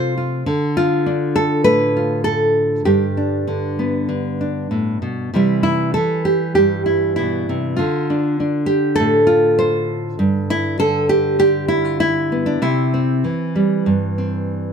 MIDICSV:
0, 0, Header, 1, 2, 480
1, 0, Start_track
1, 0, Key_signature, 0, "major"
1, 0, Tempo, 599401
1, 369, Time_signature, 4, 2, 24, 8
1, 2290, Tempo, 617284
1, 5650, Tempo, 601805
1, 9490, Tempo, 626305
1, 11585, End_track
2, 0, Start_track
2, 0, Title_t, "Nylon-string guitar"
2, 0, Program_c, 0, 24
2, 0, Note_on_c, 0, 48, 64
2, 0, Note_on_c, 0, 53, 66
2, 0, Note_on_c, 0, 57, 61
2, 0, Note_on_c, 0, 65, 85
2, 0, Note_on_c, 0, 72, 107
2, 129, Note_off_c, 0, 65, 0
2, 140, Note_on_c, 0, 65, 43
2, 343, Note_off_c, 0, 48, 0
2, 344, Note_off_c, 0, 53, 0
2, 345, Note_off_c, 0, 57, 0
2, 345, Note_off_c, 0, 65, 0
2, 371, Note_on_c, 0, 50, 80
2, 373, Note_off_c, 0, 72, 0
2, 615, Note_on_c, 0, 65, 101
2, 852, Note_on_c, 0, 62, 65
2, 1086, Note_on_c, 0, 69, 96
2, 1313, Note_off_c, 0, 69, 0
2, 1316, Note_on_c, 0, 71, 112
2, 1330, Note_on_c, 0, 45, 65
2, 1565, Note_off_c, 0, 65, 0
2, 1574, Note_on_c, 0, 65, 39
2, 1792, Note_off_c, 0, 71, 0
2, 1795, Note_on_c, 0, 69, 103
2, 2261, Note_off_c, 0, 45, 0
2, 2261, Note_off_c, 0, 62, 0
2, 2265, Note_off_c, 0, 65, 0
2, 2282, Note_off_c, 0, 69, 0
2, 2285, Note_on_c, 0, 67, 75
2, 2286, Note_on_c, 0, 43, 75
2, 2534, Note_on_c, 0, 62, 41
2, 2759, Note_off_c, 0, 50, 0
2, 2769, Note_on_c, 0, 50, 65
2, 3013, Note_on_c, 0, 59, 42
2, 3235, Note_off_c, 0, 50, 0
2, 3239, Note_off_c, 0, 67, 0
2, 3244, Note_on_c, 0, 50, 61
2, 3485, Note_off_c, 0, 62, 0
2, 3494, Note_on_c, 0, 62, 42
2, 3724, Note_off_c, 0, 50, 0
2, 3727, Note_on_c, 0, 45, 56
2, 3966, Note_off_c, 0, 45, 0
2, 3969, Note_on_c, 0, 47, 53
2, 4178, Note_off_c, 0, 43, 0
2, 4185, Note_off_c, 0, 59, 0
2, 4186, Note_off_c, 0, 62, 0
2, 4209, Note_off_c, 0, 47, 0
2, 4215, Note_on_c, 0, 48, 68
2, 4219, Note_on_c, 0, 52, 45
2, 4227, Note_on_c, 0, 55, 51
2, 4236, Note_on_c, 0, 64, 52
2, 4436, Note_off_c, 0, 64, 0
2, 4445, Note_on_c, 0, 64, 85
2, 4681, Note_off_c, 0, 64, 0
2, 4684, Note_on_c, 0, 69, 87
2, 4694, Note_off_c, 0, 52, 0
2, 4697, Note_off_c, 0, 48, 0
2, 4704, Note_on_c, 0, 52, 64
2, 4924, Note_off_c, 0, 69, 0
2, 4927, Note_on_c, 0, 67, 79
2, 5151, Note_off_c, 0, 67, 0
2, 5160, Note_on_c, 0, 67, 88
2, 5177, Note_on_c, 0, 43, 62
2, 5396, Note_off_c, 0, 67, 0
2, 5399, Note_on_c, 0, 64, 68
2, 5625, Note_off_c, 0, 64, 0
2, 5634, Note_on_c, 0, 64, 80
2, 5654, Note_on_c, 0, 47, 54
2, 5895, Note_off_c, 0, 47, 0
2, 5899, Note_on_c, 0, 48, 60
2, 6106, Note_off_c, 0, 43, 0
2, 6110, Note_off_c, 0, 52, 0
2, 6116, Note_on_c, 0, 65, 74
2, 6125, Note_off_c, 0, 64, 0
2, 6134, Note_on_c, 0, 50, 76
2, 6136, Note_off_c, 0, 48, 0
2, 6142, Note_off_c, 0, 55, 0
2, 6384, Note_on_c, 0, 62, 46
2, 6618, Note_off_c, 0, 62, 0
2, 6622, Note_on_c, 0, 62, 55
2, 6829, Note_off_c, 0, 65, 0
2, 6833, Note_on_c, 0, 67, 91
2, 7066, Note_on_c, 0, 69, 112
2, 7101, Note_on_c, 0, 45, 65
2, 7311, Note_off_c, 0, 67, 0
2, 7315, Note_on_c, 0, 65, 77
2, 7564, Note_off_c, 0, 69, 0
2, 7569, Note_on_c, 0, 72, 93
2, 8030, Note_off_c, 0, 45, 0
2, 8032, Note_off_c, 0, 62, 0
2, 8044, Note_off_c, 0, 65, 0
2, 8049, Note_on_c, 0, 43, 70
2, 8051, Note_off_c, 0, 72, 0
2, 8300, Note_on_c, 0, 64, 105
2, 8519, Note_off_c, 0, 50, 0
2, 8528, Note_on_c, 0, 50, 63
2, 8531, Note_off_c, 0, 64, 0
2, 8534, Note_on_c, 0, 69, 118
2, 8768, Note_off_c, 0, 69, 0
2, 8771, Note_on_c, 0, 67, 101
2, 8998, Note_off_c, 0, 50, 0
2, 9000, Note_off_c, 0, 67, 0
2, 9007, Note_on_c, 0, 50, 65
2, 9012, Note_on_c, 0, 67, 104
2, 9239, Note_off_c, 0, 67, 0
2, 9242, Note_on_c, 0, 64, 93
2, 9370, Note_on_c, 0, 65, 92
2, 9485, Note_off_c, 0, 64, 0
2, 9495, Note_on_c, 0, 64, 102
2, 9739, Note_on_c, 0, 59, 45
2, 9844, Note_off_c, 0, 65, 0
2, 9847, Note_on_c, 0, 62, 77
2, 9931, Note_off_c, 0, 43, 0
2, 9935, Note_off_c, 0, 50, 0
2, 9941, Note_off_c, 0, 59, 0
2, 9961, Note_off_c, 0, 64, 0
2, 9964, Note_off_c, 0, 62, 0
2, 9967, Note_on_c, 0, 48, 81
2, 9971, Note_on_c, 0, 64, 82
2, 10212, Note_on_c, 0, 60, 45
2, 10438, Note_off_c, 0, 48, 0
2, 10446, Note_on_c, 0, 52, 57
2, 10686, Note_on_c, 0, 55, 47
2, 10921, Note_on_c, 0, 43, 60
2, 11156, Note_off_c, 0, 60, 0
2, 11166, Note_on_c, 0, 60, 40
2, 11585, Note_off_c, 0, 43, 0
2, 11585, Note_off_c, 0, 52, 0
2, 11585, Note_off_c, 0, 55, 0
2, 11585, Note_off_c, 0, 60, 0
2, 11585, Note_off_c, 0, 64, 0
2, 11585, End_track
0, 0, End_of_file